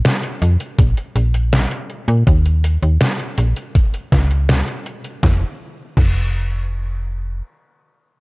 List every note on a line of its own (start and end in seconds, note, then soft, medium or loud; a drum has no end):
0.05 snare loud
0.05 closed hi-hat medium
0.23 closed hi-hat soft
0.42 0.57 F2 medium
0.42 closed hi-hat medium
0.60 closed hi-hat soft
0.79 0.94 A#1 medium
0.79 kick loud
0.79 closed hi-hat medium
0.97 closed hi-hat soft
1.16 1.66 A#1 medium
1.16 closed hi-hat medium
1.34 closed hi-hat soft
1.53 snare loud
1.53 closed hi-hat medium
1.71 closed hi-hat soft
1.90 closed hi-hat soft
2.08 2.24 A#2 loud
2.08 closed hi-hat soft
2.27 2.78 D#2 loud
2.27 kick loud
2.27 closed hi-hat medium
2.46 closed hi-hat soft
2.64 closed hi-hat medium
2.82 2.98 D#2 medium
2.82 closed hi-hat soft
3.01 snare loud
3.01 closed hi-hat medium
3.19 closed hi-hat soft
3.38 3.53 A#1 medium
3.38 closed hi-hat medium
3.56 closed hi-hat soft
3.75 kick loud
3.75 closed hi-hat medium
3.94 closed hi-hat soft
4.12 4.63 C#2 medium
4.12 kick medium
4.12 snare medium
4.12 closed hi-hat medium
4.31 closed hi-hat soft
4.49 snare loud
4.49 closed hi-hat medium
4.68 closed hi-hat soft
4.86 closed hi-hat soft
5.04 closed hi-hat soft
5.23 5.44 F1 medium
5.23 kick loud
5.23 snare medium
5.97 7.41 F1 medium
5.97 kick loud
5.97 crash medium